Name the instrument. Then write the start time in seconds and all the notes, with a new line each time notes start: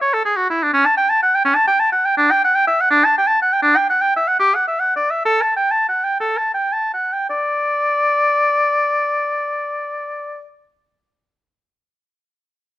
oboe
0.01 C#5
0.14 A4
0.25 G#4
0.36 F#4
0.50 E4
0.63 D4
0.73 C#4
0.86 A5
0.97 G5
1.09 A5
1.23 F#5
1.35 G5
1.45 C#4
1.55 A5
1.67 G5
1.80 A5
1.92 F#5
2.05 G5
2.17 D4
2.31 G5
2.45 F#5
2.55 G5
2.67 E5
2.81 F#5
2.91 D4
3.05 A5
3.18 G5
3.27 A5
3.42 F#5
3.53 G5
3.62 D4
3.76 G5
3.90 F#5
4.01 G5
4.16 E5
4.27 F#5
4.40 G4
4.55 F#5
4.68 E5
4.80 F#5
4.96 D5
5.11 E5
5.25 A4
5.42 A5
5.56 G5
5.71 A5
5.89 F#5
6.04 G5
6.20 A4
6.38 A5
6.54 G5
6.73 A5
6.93 F#5
7.13 G5
7.30 D5